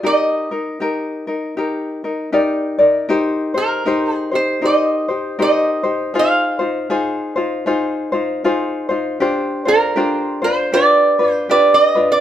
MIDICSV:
0, 0, Header, 1, 3, 480
1, 0, Start_track
1, 0, Key_signature, -3, "major"
1, 0, Tempo, 764331
1, 24, Time_signature, 4, 2, 24, 8
1, 1944, Key_signature, -3, "minor"
1, 7665, End_track
2, 0, Start_track
2, 0, Title_t, "Resonator guitar played with a steel bar"
2, 0, Program_c, 0, 25
2, 40, Note_on_c, 0, 75, 85
2, 1447, Note_off_c, 0, 75, 0
2, 2245, Note_on_c, 0, 70, 84
2, 2603, Note_off_c, 0, 70, 0
2, 2603, Note_on_c, 0, 68, 84
2, 2731, Note_off_c, 0, 68, 0
2, 2733, Note_on_c, 0, 72, 73
2, 2903, Note_off_c, 0, 72, 0
2, 2923, Note_on_c, 0, 75, 79
2, 3397, Note_off_c, 0, 75, 0
2, 3405, Note_on_c, 0, 75, 88
2, 3887, Note_off_c, 0, 75, 0
2, 3889, Note_on_c, 0, 77, 93
2, 5290, Note_off_c, 0, 77, 0
2, 6081, Note_on_c, 0, 70, 85
2, 6558, Note_on_c, 0, 72, 85
2, 6569, Note_off_c, 0, 70, 0
2, 6742, Note_on_c, 0, 74, 96
2, 6753, Note_off_c, 0, 72, 0
2, 7106, Note_off_c, 0, 74, 0
2, 7106, Note_on_c, 0, 72, 96
2, 7220, Note_off_c, 0, 72, 0
2, 7227, Note_on_c, 0, 74, 91
2, 7371, Note_off_c, 0, 74, 0
2, 7374, Note_on_c, 0, 75, 91
2, 7593, Note_off_c, 0, 75, 0
2, 7610, Note_on_c, 0, 74, 89
2, 7665, Note_off_c, 0, 74, 0
2, 7665, End_track
3, 0, Start_track
3, 0, Title_t, "Ukulele"
3, 0, Program_c, 1, 24
3, 20, Note_on_c, 1, 67, 56
3, 21, Note_on_c, 1, 63, 66
3, 27, Note_on_c, 1, 70, 72
3, 308, Note_off_c, 1, 63, 0
3, 308, Note_off_c, 1, 67, 0
3, 311, Note_off_c, 1, 70, 0
3, 321, Note_on_c, 1, 70, 51
3, 328, Note_on_c, 1, 63, 41
3, 500, Note_off_c, 1, 63, 0
3, 503, Note_on_c, 1, 67, 65
3, 505, Note_off_c, 1, 70, 0
3, 507, Note_on_c, 1, 63, 60
3, 513, Note_on_c, 1, 70, 81
3, 789, Note_off_c, 1, 67, 0
3, 791, Note_off_c, 1, 63, 0
3, 791, Note_off_c, 1, 70, 0
3, 799, Note_on_c, 1, 70, 45
3, 806, Note_on_c, 1, 63, 41
3, 979, Note_off_c, 1, 63, 0
3, 985, Note_on_c, 1, 67, 63
3, 987, Note_on_c, 1, 63, 59
3, 988, Note_off_c, 1, 70, 0
3, 995, Note_on_c, 1, 70, 67
3, 1270, Note_off_c, 1, 67, 0
3, 1271, Note_off_c, 1, 63, 0
3, 1274, Note_off_c, 1, 70, 0
3, 1281, Note_on_c, 1, 70, 48
3, 1286, Note_on_c, 1, 63, 42
3, 1454, Note_off_c, 1, 63, 0
3, 1456, Note_off_c, 1, 70, 0
3, 1459, Note_on_c, 1, 67, 64
3, 1461, Note_on_c, 1, 63, 80
3, 1464, Note_on_c, 1, 70, 75
3, 1468, Note_on_c, 1, 74, 71
3, 1742, Note_off_c, 1, 74, 0
3, 1745, Note_off_c, 1, 70, 0
3, 1747, Note_off_c, 1, 67, 0
3, 1748, Note_off_c, 1, 63, 0
3, 1749, Note_on_c, 1, 74, 55
3, 1753, Note_on_c, 1, 70, 50
3, 1758, Note_on_c, 1, 63, 50
3, 1931, Note_off_c, 1, 70, 0
3, 1936, Note_off_c, 1, 63, 0
3, 1938, Note_on_c, 1, 70, 68
3, 1943, Note_on_c, 1, 63, 86
3, 1944, Note_off_c, 1, 74, 0
3, 1946, Note_on_c, 1, 67, 81
3, 1949, Note_on_c, 1, 72, 79
3, 2217, Note_off_c, 1, 72, 0
3, 2224, Note_on_c, 1, 72, 50
3, 2225, Note_off_c, 1, 67, 0
3, 2227, Note_off_c, 1, 70, 0
3, 2229, Note_off_c, 1, 63, 0
3, 2232, Note_on_c, 1, 67, 52
3, 2238, Note_on_c, 1, 63, 50
3, 2417, Note_off_c, 1, 63, 0
3, 2420, Note_on_c, 1, 70, 64
3, 2421, Note_off_c, 1, 67, 0
3, 2421, Note_off_c, 1, 72, 0
3, 2425, Note_on_c, 1, 63, 83
3, 2428, Note_on_c, 1, 67, 74
3, 2434, Note_on_c, 1, 72, 85
3, 2702, Note_off_c, 1, 72, 0
3, 2708, Note_off_c, 1, 70, 0
3, 2710, Note_off_c, 1, 63, 0
3, 2710, Note_on_c, 1, 72, 44
3, 2711, Note_off_c, 1, 67, 0
3, 2718, Note_on_c, 1, 67, 41
3, 2722, Note_on_c, 1, 63, 36
3, 2895, Note_off_c, 1, 63, 0
3, 2898, Note_on_c, 1, 70, 57
3, 2902, Note_off_c, 1, 67, 0
3, 2902, Note_on_c, 1, 63, 70
3, 2904, Note_off_c, 1, 72, 0
3, 2910, Note_on_c, 1, 67, 65
3, 2913, Note_on_c, 1, 72, 69
3, 3185, Note_off_c, 1, 72, 0
3, 3186, Note_off_c, 1, 70, 0
3, 3188, Note_off_c, 1, 63, 0
3, 3192, Note_off_c, 1, 67, 0
3, 3193, Note_on_c, 1, 72, 49
3, 3200, Note_on_c, 1, 67, 46
3, 3203, Note_on_c, 1, 63, 42
3, 3377, Note_off_c, 1, 63, 0
3, 3381, Note_off_c, 1, 67, 0
3, 3383, Note_on_c, 1, 70, 67
3, 3384, Note_off_c, 1, 72, 0
3, 3385, Note_on_c, 1, 63, 59
3, 3388, Note_on_c, 1, 67, 70
3, 3391, Note_on_c, 1, 72, 67
3, 3656, Note_off_c, 1, 72, 0
3, 3660, Note_off_c, 1, 67, 0
3, 3663, Note_on_c, 1, 72, 51
3, 3666, Note_off_c, 1, 63, 0
3, 3667, Note_on_c, 1, 67, 47
3, 3668, Note_off_c, 1, 70, 0
3, 3673, Note_on_c, 1, 63, 46
3, 3853, Note_off_c, 1, 63, 0
3, 3855, Note_on_c, 1, 68, 63
3, 3857, Note_off_c, 1, 72, 0
3, 3860, Note_off_c, 1, 67, 0
3, 3861, Note_on_c, 1, 63, 61
3, 3863, Note_on_c, 1, 65, 81
3, 3865, Note_on_c, 1, 72, 88
3, 4131, Note_off_c, 1, 72, 0
3, 4138, Note_on_c, 1, 72, 60
3, 4140, Note_off_c, 1, 65, 0
3, 4144, Note_off_c, 1, 68, 0
3, 4146, Note_off_c, 1, 63, 0
3, 4148, Note_on_c, 1, 65, 53
3, 4153, Note_on_c, 1, 63, 43
3, 4329, Note_off_c, 1, 65, 0
3, 4330, Note_off_c, 1, 63, 0
3, 4332, Note_on_c, 1, 68, 74
3, 4334, Note_off_c, 1, 72, 0
3, 4337, Note_on_c, 1, 65, 80
3, 4338, Note_on_c, 1, 63, 78
3, 4341, Note_on_c, 1, 72, 72
3, 4613, Note_off_c, 1, 72, 0
3, 4620, Note_off_c, 1, 65, 0
3, 4620, Note_on_c, 1, 72, 52
3, 4623, Note_off_c, 1, 68, 0
3, 4626, Note_off_c, 1, 63, 0
3, 4628, Note_on_c, 1, 65, 51
3, 4634, Note_on_c, 1, 63, 42
3, 4808, Note_off_c, 1, 63, 0
3, 4809, Note_off_c, 1, 65, 0
3, 4810, Note_on_c, 1, 68, 63
3, 4811, Note_off_c, 1, 72, 0
3, 4815, Note_on_c, 1, 63, 71
3, 4817, Note_on_c, 1, 65, 76
3, 4818, Note_on_c, 1, 72, 74
3, 5092, Note_off_c, 1, 72, 0
3, 5098, Note_off_c, 1, 65, 0
3, 5100, Note_on_c, 1, 72, 55
3, 5102, Note_off_c, 1, 68, 0
3, 5104, Note_off_c, 1, 63, 0
3, 5106, Note_on_c, 1, 65, 51
3, 5112, Note_on_c, 1, 63, 45
3, 5298, Note_off_c, 1, 65, 0
3, 5298, Note_off_c, 1, 72, 0
3, 5299, Note_off_c, 1, 63, 0
3, 5302, Note_on_c, 1, 68, 73
3, 5305, Note_on_c, 1, 65, 84
3, 5307, Note_on_c, 1, 63, 73
3, 5311, Note_on_c, 1, 72, 77
3, 5574, Note_off_c, 1, 72, 0
3, 5581, Note_on_c, 1, 72, 55
3, 5584, Note_off_c, 1, 65, 0
3, 5588, Note_off_c, 1, 68, 0
3, 5590, Note_off_c, 1, 63, 0
3, 5592, Note_on_c, 1, 65, 60
3, 5597, Note_on_c, 1, 63, 44
3, 5776, Note_off_c, 1, 65, 0
3, 5779, Note_off_c, 1, 72, 0
3, 5779, Note_on_c, 1, 67, 81
3, 5781, Note_off_c, 1, 63, 0
3, 5783, Note_on_c, 1, 62, 75
3, 5783, Note_on_c, 1, 65, 74
3, 5788, Note_on_c, 1, 72, 83
3, 6055, Note_off_c, 1, 72, 0
3, 6062, Note_on_c, 1, 72, 63
3, 6063, Note_off_c, 1, 65, 0
3, 6066, Note_off_c, 1, 62, 0
3, 6066, Note_off_c, 1, 67, 0
3, 6070, Note_on_c, 1, 65, 46
3, 6073, Note_on_c, 1, 62, 48
3, 6252, Note_off_c, 1, 62, 0
3, 6254, Note_on_c, 1, 67, 79
3, 6255, Note_off_c, 1, 65, 0
3, 6258, Note_off_c, 1, 72, 0
3, 6260, Note_on_c, 1, 62, 88
3, 6262, Note_on_c, 1, 65, 77
3, 6265, Note_on_c, 1, 72, 79
3, 6534, Note_off_c, 1, 72, 0
3, 6541, Note_off_c, 1, 65, 0
3, 6542, Note_on_c, 1, 72, 51
3, 6543, Note_off_c, 1, 67, 0
3, 6546, Note_off_c, 1, 62, 0
3, 6548, Note_on_c, 1, 65, 46
3, 6557, Note_on_c, 1, 62, 40
3, 6732, Note_off_c, 1, 62, 0
3, 6734, Note_on_c, 1, 67, 64
3, 6736, Note_off_c, 1, 65, 0
3, 6739, Note_off_c, 1, 72, 0
3, 6739, Note_on_c, 1, 62, 62
3, 6743, Note_on_c, 1, 65, 65
3, 6748, Note_on_c, 1, 71, 61
3, 7020, Note_off_c, 1, 71, 0
3, 7023, Note_off_c, 1, 67, 0
3, 7026, Note_off_c, 1, 62, 0
3, 7026, Note_off_c, 1, 65, 0
3, 7027, Note_on_c, 1, 71, 54
3, 7034, Note_on_c, 1, 65, 46
3, 7041, Note_on_c, 1, 62, 45
3, 7215, Note_off_c, 1, 62, 0
3, 7216, Note_off_c, 1, 65, 0
3, 7218, Note_on_c, 1, 67, 65
3, 7222, Note_off_c, 1, 71, 0
3, 7222, Note_on_c, 1, 62, 71
3, 7224, Note_on_c, 1, 65, 72
3, 7229, Note_on_c, 1, 71, 70
3, 7499, Note_off_c, 1, 71, 0
3, 7505, Note_off_c, 1, 65, 0
3, 7506, Note_off_c, 1, 67, 0
3, 7506, Note_on_c, 1, 71, 53
3, 7508, Note_off_c, 1, 62, 0
3, 7513, Note_on_c, 1, 65, 46
3, 7518, Note_on_c, 1, 62, 49
3, 7665, Note_off_c, 1, 62, 0
3, 7665, Note_off_c, 1, 65, 0
3, 7665, Note_off_c, 1, 71, 0
3, 7665, End_track
0, 0, End_of_file